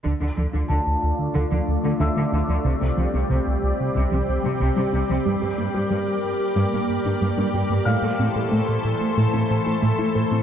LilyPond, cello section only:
\new Staff \with { instrumentName = "Cello section" } { \clef bass \time 4/4 \key d \minor \tempo 4 = 92 d16 d16 d16 d16 d16 r8. d16 d16 r16 d16 d16 d16 d16 d16 | c16 c16 c16 c16 c16 r8. c16 c16 r16 c16 c16 c16 c16 c16 | g,16 g,16 g,16 g,16 g,16 r8. g,16 g,16 r16 g,16 g,16 g,16 g,16 g,16 | a,16 a,16 a,16 a,16 a,16 r8. a,16 a,16 r16 a,16 a,16 a,16 a,16 a,16 | }